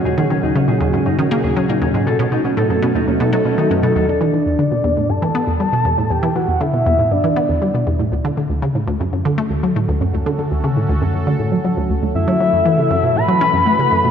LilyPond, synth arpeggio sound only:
\new Staff \with { instrumentName = "Synth arpeggio sound" } { \clef bass \time 4/4 \key b \major \tempo 4 = 119 dis,16 dis16 dis16 dis,16 cis16 ais,16 dis,16 gis,16 fis,16 dis16 ais16 dis,16 fis16 ais,16 dis,16 gis,16 | b,16 b,16 b,16 b,16 a,16 fis,16 b,16 dis,16 dis,16 b,16 fis16 b,16 dis16 fis,16 b,16 dis,16 | \key e \dorian e,16 e16 e16 e,16 d16 b,16 e,16 a,16 g,16 e16 b16 e,16 g16 b,16 e,16 a,16 | e,16 e16 e16 e,16 d16 b,16 e,16 a,16 g,16 e16 b16 e,16 g16 b,16 e,16 a,16 |
d,16 d16 d16 d,16 cis16 a,16 d,16 fis,16 fis,16 d16 a16 d,16 fis16 a,16 d,16 fis,16 | d,16 d16 d16 d,16 cis16 a,16 d,16 fis,16 fis,16 d16 a,16 fis16 fis16 d,16 d,16 d,16 | fis,16 fis16 fis16 fis,16 e16 cis16 fis,16 b,16 a,16 fis16 cis'16 fis,16 a16 cis16 fis,16 b,16 | }